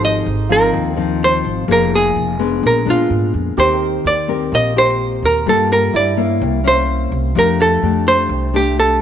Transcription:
0.00 0.23 G#1 medium
0.00 0.71 G#2 medium
0.00 0.26 F3 medium
0.00 0.26 C4 soft
0.00 0.27 D#4 medium
0.00 1.70 D#4 medium
0.00 0.14 G4 soft
0.00 0.28 A4 soft
0.05 0.48 D#5 medium
0.26 0.70 G#1 medium
0.49 0.93 F3 medium
0.49 0.93 C4 medium
0.49 0.93 D#4 medium
0.49 1.87 F4 soft
0.49 1.18 A#4 medium
0.73 1.40 D#2 medium
0.73 1.65 D#3 medium
0.96 1.64 F3 medium
0.96 1.64 C4 medium
0.96 1.64 D#4 medium
1.24 1.71 C5 medium
1.44 1.66 G#1 medium
1.68 2.12 F1 medium
1.68 2.39 F3 soft
1.68 2.35 A#3 soft
1.68 2.35 D#4 medium
1.68 2.36 G#4 medium
1.72 1.94 A#4 medium
1.95 2.66 G#4 medium
2.16 2.59 F1 medium
2.39 2.82 G#3 medium
2.39 2.83 B3 medium
2.39 2.83 D4 medium
2.62 2.85 A#1 medium
2.62 3.55 A#2 medium
2.67 2.87 A#4 medium
2.85 3.08 A#2 medium
2.85 3.53 G#3 medium
2.85 3.53 B3 medium
2.85 3.53 D4 medium
2.90 3.32 F4 medium
3.10 3.31 G#2 medium
3.34 3.55 F2 medium
3.57 4.01 D#2 medium
3.57 4.49 D#3 medium
3.57 4.04 C4 soft
3.57 4.98 G4 soft
3.57 4.04 G4 medium
3.57 4.04 A#4 medium
3.57 4.07 C5 medium
3.74 5.13 A#4 soft
4.04 4.48 D#2 medium
4.04 4.54 D5 medium
4.28 4.71 C4 medium
4.28 4.72 G4 medium
4.28 4.72 A#4 medium
4.51 5.19 A#1 medium
4.51 5.44 A#2 soft
4.51 4.75 D#5 medium
4.76 5.43 C4 medium
4.76 5.43 G4 medium
4.76 5.43 A#4 medium
4.76 5.25 C5 medium
5.23 5.44 D#2 medium
5.23 5.48 A#4 medium
5.46 5.90 G2 medium
5.46 6.17 G3 medium
5.46 5.93 A#3 medium
5.46 5.94 F4 medium
5.46 5.94 A4 medium
5.46 5.72 A4 medium
5.73 5.95 A#4 medium
5.93 6.37 G2 medium
5.93 6.60 E4 soft
5.93 6.39 D5 medium
6.17 6.60 A#3 medium
6.17 6.61 C#4 medium
6.17 6.61 E4 medium
6.40 7.08 C2 medium
6.40 7.33 C3 soft
6.64 7.31 A#3 medium
6.64 7.31 C#4 medium
6.64 7.31 E4 medium
6.64 7.33 C5 medium
7.12 7.33 C2 medium
7.35 7.79 F2 medium
7.35 8.27 F3 soft
7.35 7.79 A3 medium
7.35 7.79 D4 medium
7.35 7.79 G4 medium
7.35 7.61 A#4 medium
7.62 8.09 A4 medium
7.82 8.26 F2 medium
7.82 8.49 A3 medium
7.82 8.50 D4 medium
7.82 8.50 G4 medium
8.08 8.55 C5 medium
8.29 8.96 C2 medium
8.29 9.02 C3 medium
8.53 9.02 A3 medium
8.53 9.02 D4 medium
8.53 9.02 G4 medium
8.53 8.79 G4 medium
8.80 9.02 A4 medium

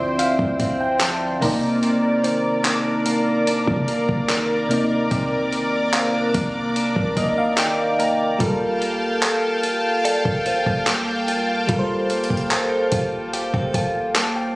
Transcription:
0.00 0.37 D2 loud
0.00 1.37 D3 medium
0.00 1.42 D3 medium
0.00 1.00 F3 medium
0.00 0.59 C4 medium
0.00 1.38 C4 medium
0.00 0.17 E4 medium
0.00 1.38 F4 medium
0.00 1.37 C5 medium
0.00 0.16 D5 medium
0.00 1.39 E5 medium
0.00 1.38 G5 medium
0.19 1.50 E4 medium
0.19 0.76 F5 medium
0.19 closed hi-hat medium
0.39 0.59 D2 loud
0.39 kick medium
0.60 1.38 D2 loud
0.60 2.68 C4 medium
0.60 kick medium
0.60 closed hi-hat medium
0.81 0.99 G5 medium
1.00 1.50 F3 medium
1.00 1.39 A5 medium
1.00 clap loud
1.00 closed hi-hat medium
1.40 1.81 C2 loud
1.40 4.66 C3 medium
1.40 1.82 C3 medium
1.40 4.66 A#3 medium
1.40 4.67 D#4 medium
1.40 2.95 A#4 medium
1.40 8.36 A#4 medium
1.40 8.36 D5 medium
1.40 1.80 A#5 medium
1.40 8.37 D6 medium
1.40 open hi-hat medium
1.45 4.68 D5 medium
1.83 5.10 C3 medium
1.83 closed hi-hat medium
2.24 4.28 D#3 medium
2.24 3.77 C5 medium
2.24 closed hi-hat medium
2.64 3.47 D4 medium
2.64 clap loud
2.64 closed hi-hat medium
3.06 3.88 A#3 medium
3.06 closed hi-hat medium
3.47 5.93 D4 medium
3.47 closed hi-hat medium
3.67 4.07 C3 loud
3.67 kick medium
3.88 4.70 A#3 medium
3.88 closed hi-hat medium
4.09 4.72 C2 loud
4.09 kick loud
4.29 5.51 D#3 medium
4.29 clap loud
4.29 closed hi-hat medium
4.68 5.09 D#2 loud
4.68 7.94 C3 medium
4.68 7.95 A#3 medium
4.68 6.34 A#3 medium
4.68 7.96 D#4 medium
4.68 closed hi-hat medium
4.73 7.97 D5 medium
5.11 5.95 C2 loud
5.11 8.40 C3 medium
5.11 kick loud
5.11 closed hi-hat medium
5.52 7.57 D#3 medium
5.52 closed hi-hat medium
5.93 6.15 A#1 loud
5.93 6.14 C4 medium
5.93 7.46 F5 medium
5.93 clap loud
5.93 closed hi-hat medium
6.14 6.33 C2 medium
6.14 6.75 D4 medium
6.34 6.94 C2 loud
6.34 7.17 A#3 medium
6.34 kick loud
6.34 closed hi-hat medium
6.76 9.63 D4 medium
6.76 closed hi-hat medium
6.96 7.16 D#2 loud
6.96 kick loud
7.17 8.36 C2 loud
7.17 7.99 A#3 medium
7.17 7.36 D#5 medium
7.17 kick medium
7.17 closed hi-hat medium
7.38 7.57 F5 medium
7.58 8.40 D#3 medium
7.58 7.97 G5 medium
7.58 clap loud
7.58 closed hi-hat medium
7.99 8.81 A#3 medium
7.99 8.38 A#5 medium
7.99 closed hi-hat medium
8.38 9.39 G1 loud
8.38 11.64 G3 medium
8.38 11.69 G3 medium
8.38 11.65 F4 medium
8.38 11.66 A4 medium
8.38 14.56 F5 medium
8.38 14.56 G5 medium
8.38 14.56 A5 medium
8.38 kick loud
8.38 closed hi-hat medium
8.43 11.67 A#4 medium
8.81 10.87 A#3 medium
8.81 closed hi-hat medium
9.22 10.04 A4 medium
9.22 clap loud
9.22 closed hi-hat medium
9.63 10.45 F4 medium
9.63 closed hi-hat medium
10.05 12.51 A4 medium
10.05 11.58 D5 medium
10.05 closed hi-hat medium
10.25 10.65 G1 loud
10.25 kick medium
10.46 11.28 F4 medium
10.46 11.99 C5 soft
10.46 closed hi-hat medium
10.66 11.65 G1 loud
10.66 kick medium
10.87 12.10 A#3 medium
10.87 clap loud
10.87 closed hi-hat medium
11.28 12.92 F4 medium
11.28 closed hi-hat medium
11.67 12.28 G1 loud
11.67 14.56 G3 medium
11.67 14.56 F4 medium
11.67 14.56 A4 medium
11.67 kick loud
11.67 closed hi-hat medium
11.72 11.77 A#4 medium
11.79 14.56 C5 medium
12.10 14.15 A#3 medium
12.10 closed hi-hat medium
12.24 closed hi-hat medium
12.30 12.90 G1 loud
12.30 kick medium
12.37 closed hi-hat soft
12.50 13.33 A4 medium
12.50 clap loud
12.50 closed hi-hat medium
12.92 13.51 G1 loud
12.92 13.74 F4 medium
12.92 14.46 F5 medium
12.92 kick loud
12.92 closed hi-hat medium
13.33 13.54 G4 medium
13.33 closed hi-hat medium
13.54 13.74 G1 loud
13.54 14.56 A4 medium
13.54 kick loud
13.74 14.56 G1 loud
13.74 14.56 F4 medium
13.74 14.56 G5 medium
13.74 kick loud
13.74 closed hi-hat medium
14.15 14.56 A#3 medium
14.15 14.35 A5 medium
14.15 clap loud
14.15 closed hi-hat medium
14.36 14.55 G5 medium

